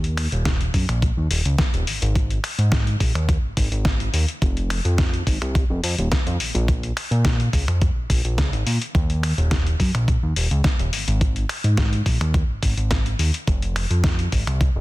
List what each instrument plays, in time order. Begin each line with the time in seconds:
Already playing: analog synth bass D#2
0.04 closed hi-hat
0.17 finger snap, open hi-hat
0.32 analog synth bass D#1, closed hi-hat
0.45 kick, snare, closed hi-hat
0.61 closed hi-hat
0.74 analog synth bass F#2, kick, open hi-hat
0.89 analog synth bass A#1, finger snap, closed hi-hat
1.02 kick, closed hi-hat
1.17 analog synth bass D#2
1.31 analog synth bass D#1, open hi-hat
1.45 analog synth bass C#2, closed hi-hat
1.58 kick, snare, closed hi-hat
1.74 analog synth bass D#1, closed hi-hat
1.87 analog synth bass G#1, open hi-hat
2.02 analog synth bass G#1, closed hi-hat
2.15 kick, closed hi-hat
2.30 closed hi-hat
2.44 finger snap, open hi-hat
2.58 analog synth bass G#2, closed hi-hat
2.72 kick, snare, closed hi-hat
2.87 closed hi-hat
3.00 analog synth bass A#1, kick, open hi-hat
3.15 analog synth bass D#2, finger snap, closed hi-hat
3.29 kick, closed hi-hat
3.43 analog synth bass G#1
3.57 analog synth bass G#1, kick, open hi-hat
3.72 analog synth bass G#1, closed hi-hat
3.85 kick, snare, closed hi-hat
4.00 closed hi-hat
4.13 analog synth bass D#2, open hi-hat
4.29 closed hi-hat
4.42 analog synth bass F1, kick, closed hi-hat
4.57 closed hi-hat
4.70 finger snap, open hi-hat
4.85 analog synth bass F2, closed hi-hat
4.98 kick, snare, closed hi-hat
5.14 closed hi-hat
5.27 analog synth bass G#1, kick, open hi-hat
5.42 analog synth bass C2, finger snap, closed hi-hat
5.55 kick, closed hi-hat
5.70 analog synth bass F1
5.83 analog synth bass F2, open hi-hat
5.98 analog synth bass D#1, closed hi-hat
6.12 kick, snare, closed hi-hat
6.27 analog synth bass F2, closed hi-hat
6.40 analog synth bass A#1, open hi-hat
6.55 analog synth bass A#1, closed hi-hat
6.68 kick, closed hi-hat
6.83 closed hi-hat
6.97 finger snap, open hi-hat
7.11 analog synth bass A#2, closed hi-hat
7.25 kick, snare, closed hi-hat
7.40 closed hi-hat
7.53 analog synth bass C#2, kick, open hi-hat
7.68 analog synth bass F2, finger snap, closed hi-hat
7.82 kick, closed hi-hat
7.96 analog synth bass A#1
8.10 analog synth bass A#1, kick, open hi-hat
8.25 analog synth bass A#1, closed hi-hat
8.38 analog synth bass C#2, kick, snare, closed hi-hat
8.53 analog synth bass G#1, closed hi-hat
8.66 analog synth bass A#2, open hi-hat
8.82 closed hi-hat
8.95 analog synth bass D#2, kick, closed hi-hat
9.10 closed hi-hat
9.23 finger snap, open hi-hat
9.38 analog synth bass D#1, closed hi-hat
9.51 kick, snare, closed hi-hat
9.67 closed hi-hat
9.80 analog synth bass F#2, kick, open hi-hat
9.95 analog synth bass A#1, finger snap, closed hi-hat
10.08 kick, closed hi-hat
10.23 analog synth bass D#2
10.36 analog synth bass D#1, open hi-hat
10.51 analog synth bass C#2, closed hi-hat
10.64 kick, snare, closed hi-hat
10.79 analog synth bass D#1, closed hi-hat
10.93 analog synth bass G#1, open hi-hat
11.08 analog synth bass G#1, closed hi-hat
11.21 kick, closed hi-hat
11.36 closed hi-hat
11.49 finger snap, open hi-hat
11.64 analog synth bass G#2, closed hi-hat
11.77 kick, snare, closed hi-hat
11.93 closed hi-hat
12.06 analog synth bass A#1, kick, open hi-hat
12.21 analog synth bass D#2, finger snap, closed hi-hat
12.34 kick, closed hi-hat
12.49 analog synth bass G#1
12.63 analog synth bass G#1, kick, open hi-hat
12.77 analog synth bass G#1, closed hi-hat
12.91 kick, snare, closed hi-hat
13.06 closed hi-hat
13.19 analog synth bass D#2, open hi-hat
13.34 closed hi-hat
13.47 analog synth bass F1, kick, closed hi-hat
13.62 closed hi-hat
13.76 finger snap, open hi-hat
13.90 analog synth bass F2, closed hi-hat
14.04 kick, snare, closed hi-hat
14.19 closed hi-hat
14.32 analog synth bass G#1, kick, open hi-hat
14.47 analog synth bass C2, finger snap, closed hi-hat
14.61 kick, closed hi-hat
14.75 analog synth bass F1